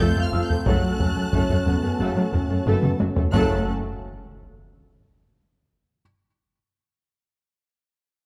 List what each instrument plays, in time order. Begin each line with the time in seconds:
Already playing: analog synth pad A3 C4 F4 A4, felt piano A6
0.00 double bass section F1, cello section F2, analog synth bass F2, viola section A3 A4, violin section F5 G6, taiko
0.16 cello section F2, analog synth bass F2, synth pluck A3, viola section A3 A4
0.23 violin section F6
0.33 double bass section F1, cello section F2, analog synth bass F2, viola section F3 F4, synth pluck F4, felt piano E6
0.45 violin section G6
0.50 cello section F2, analog synth bass F2, synth pluck A3, viola section A3 A4, taiko low
0.65 double bass section F#1, analog synth bass F#2, cello section F#2, trombone section C#3 F#3, synth pluck F#3, french horn section A3 A4, viola section A3 A4, analog synth pad C#4 F#4, violin section A5 F#6, taiko
0.83 analog synth bass F#3
1.00 double bass section F#1, cello section F#2, viola section F#3 F#4, analog synth bass F#3, synth pluck C#4, taiko low
1.16 cello section F#2, analog synth bass F#3, viola section A3 A4, synth pluck C#4
1.33 double bass section F#1, cello section F#2, analog synth bass F#2, synth pluck F#3, viola section A3 A4, french horn section C#4, taiko
1.49 analog synth bass F#2, cello section F#2, synth pluck A3, viola section A3 A4, taiko low
1.66 double bass section F#1, cello section F#2, analog synth bass F#3, viola section F#3 F#4, french horn section B3, synth pluck C#4, taiko low
1.83 cello section F#2, analog synth bass F#2, viola section A3 A4, synth pluck F#4
1.99 double bass section F#1, cello section F#2, analog synth bass F#2, trombone section C#3 F#3, synth pluck F#3, viola section A3 A4, french horn section A3
2.16 cello section F#2, analog synth bass F#3, viola section A3 A4, synth pluck C#4
2.32 double bass section F#1, cello section F#2, analog synth bass F#2, viola section F#3 F#4, french horn section C#4, synth pluck F#4, taiko low
2.49 cello section F#2, analog synth bass F#2, viola section A3 A4, synth pluck F#4
2.66 double bass section F#1, cello section F#2, analog synth bass F#2, synth pluck F#3, viola section A3 A4, french horn section B3, taiko low-mid
2.83 cello section F#2, analog synth bass F#2, synth pluck A3, viola section A3 A4, taiko mid
2.99 double bass section F#1, cello section F#2, analog synth bass F#2, viola section F#3 F#4, french horn section C#4, synth pluck F#4, taiko high
3.16 cello section F#2, analog synth bass F#2, synth pluck A3, viola section A3 A4, taiko low
3.33 double bass section F#1, cello section F#2, trombone section C#3 F#3, analog synth pad A3 C#4 F#4 A4, viola section A3 A4, french horn section A3 A4, violin section A4 A5 F#6, taiko low, impact